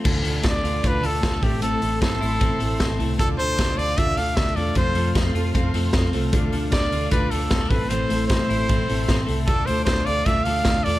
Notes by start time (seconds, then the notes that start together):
Already playing: A3
0.05 D2 D3 A3 D4 F4 A4 D5 F5 D6, kick, crash
0.24 D2 A3 D4 F4 A4, open hi-hat
0.42 D2 A3 D4 F4 A4, kick, snare, hi-hat pedal, ride
0.49 D5
0.63 D2 D4 F4 A4, open hi-hat
0.83 D2 D3 A3 D4 F4 A4 B4, kick, hi-hat pedal, ride
1.02 D2 A3 D4 F4 A4, open hi-hat
1.20 D2 A3 C4 D4 F4 A4, kick, snare, hi-hat pedal, ride
1.33 D4
1.42 A1 A2 A3 C4 E4 G4 A4 C5 E5 C6, kick, open hi-hat
1.60 A2 E3 A3 C4 E4 A4, hi-hat pedal, ride
1.81 A1 A3 C4 E4 A4, open hi-hat
2.02 A1 A3 C4 E4 A4, kick, snare, hi-hat pedal, ride
2.20 A1 A3 C4 E4 A4, open hi-hat
2.39 A1 A2 E3 A3 C4 E4 A4, kick, hi-hat pedal, ride
2.59 A1 A3 C4 E4 A4, open hi-hat
2.79 A1 A3 C4 E4 A4, kick, snare, hi-hat pedal, ride
2.98 C2 A3 C4 E4 A4, open hi-hat
3.18 D2 D3 A3 D4 F4 A4 D5 F5 D6, kick, hi-hat pedal, ride
3.38 D2 A3 F4 A4 C5, open hi-hat
3.57 D2 A3 D4 F4 A4, kick, snare, hi-hat pedal, ride
3.78 D2 D4 F4 A4 D5, open hi-hat
3.97 D2 D3 A3 D4 F4 A4 E5, kick, hi-hat pedal, ride
4.17 D2 A3 D4 F4 A4 F5, open hi-hat
4.36 D2 A3 D4 F4 A4 E5, kick, snare, hi-hat pedal, ride
4.56 E2 A3 D4 F4 A4 D5, open hi-hat
4.75 F2 F3 A3 C4 F4 A4 C5 C6, kick, hi-hat pedal, ride
4.95 F2 A3 C4 F4 A4, open hi-hat
5.14 F2 A3 C4 F4 A4, kick, snare, hi-hat pedal, ride
5.34 F2 C4 F4 A4, open hi-hat
5.54 F2 F3 A3 C4 F4 A4, kick, hi-hat pedal, ride
5.73 F2 A3 C4 F4 A4, open hi-hat
5.93 F2 A3 C4 F4 A4, kick, snare, hi-hat pedal, ride
6.13 C2 A3 C4 F4 A4, open hi-hat
6.32 D2 D3 A3 D4 F4 A4 D5 D6, kick, hi-hat pedal, ride
6.52 D2 A3 D4 F4 A4, open hi-hat
6.72 D2 A3 C4 D4 F4 A4 D5, kick, snare, hi-hat pedal, ride
6.83 D4
6.92 D2 D4 F4 A4, open hi-hat
7.11 D2 D3 A3 D4 F4 A4 B4, kick, hi-hat pedal, ride
7.31 D2 A3 D4 F4 A4, open hi-hat
7.51 D2 A3 C4 D4 F4 A4, kick, snare, hi-hat pedal, ride
7.61 D4
7.70 A1 A2 A3 C4 E4 A4 B4 C5 E5 C6, kick, open hi-hat
7.89 A2 E3 A3 C4 E4 A4 C5, hi-hat pedal, ride
8.10 A1 A3 C4 E4 A4, open hi-hat
8.28 A1 A3 C4 C5, kick, snare, hi-hat pedal, ride
8.32 E4 A4
8.50 A1 A3 C4 E4 A4, open hi-hat
8.68 A1 A2 E3 A3 C4 E4 A4, kick, hi-hat pedal, ride
8.88 A1 A3 C4 E4 A4, open hi-hat
9.07 A1 A3 C4 E4 A4, kick, snare, hi-hat pedal, ride
9.27 C2 A3 C4 E4 A4, open hi-hat
9.46 D2 D3 A3 D4 F4 A4 D5 F5 D6, kick, hi-hat pedal, ride
9.66 D2 A3 F4 A4 C5, open hi-hat
9.71 D4
9.85 D2 A3 D4 F4 A4 C5, kick, snare, hi-hat pedal, ride
10.05 D2 D4 F4 A4 D5, open hi-hat
10.25 D2 D3 A3 D4 F4 A4 E5, kick, hi-hat pedal, ride
10.44 D2 A3 D4 F4 A4 F5, open hi-hat
10.65 D2 A3 D4 F4 A4, kick, snare, hi-hat pedal, ride
10.84 E2 A3 D4 F4 A4 D5, open hi-hat